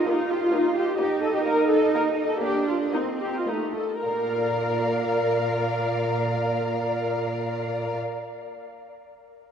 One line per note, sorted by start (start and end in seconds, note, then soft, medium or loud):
0.00 0.29 D#5 soft
0.07 0.46 A#3 soft
0.07 0.30 D#4 soft
0.07 0.99 F4 soft
0.30 0.42 G4 medium
0.30 0.75 D#5 soft
0.42 0.53 F4 soft
0.53 0.91 A#3 soft
0.53 0.76 D#4 medium
0.76 0.98 G4 medium
0.76 0.98 D#5 soft
0.99 1.38 A#3 soft
0.99 2.39 D#4 medium
0.99 1.22 G4 medium
1.22 1.33 A4 medium
1.22 1.68 D#5 soft
1.34 1.45 G4 medium
1.45 1.85 A#3 medium
1.45 1.69 A#4 medium
1.69 1.92 A4 medium
1.69 2.16 D#5 soft
1.94 2.34 A#3 medium
1.94 2.02 A#4 medium
2.17 2.41 D#5 soft
2.27 2.42 A4 soft
2.41 2.84 A#3 medium
2.41 2.92 D4 soft
2.41 2.66 G4 medium
2.41 2.66 D#5 soft
2.67 2.76 F4 soft
2.67 3.18 D#5 soft
2.93 3.38 A#3 soft
2.93 3.47 C4 soft
2.93 3.02 D#4 medium
3.20 3.33 G4 soft
3.20 3.73 D#5 soft
3.36 3.48 F4 soft
3.47 3.75 A3 soft
3.47 3.95 A#3 soft
3.47 3.76 D#4 soft
3.74 4.04 A4 soft
3.74 4.03 D#5 soft
4.03 7.96 A#2 soft
4.03 7.97 A#4 soft
4.03 7.97 D5 soft
4.03 7.97 F5 soft
4.03 7.95 A#5 soft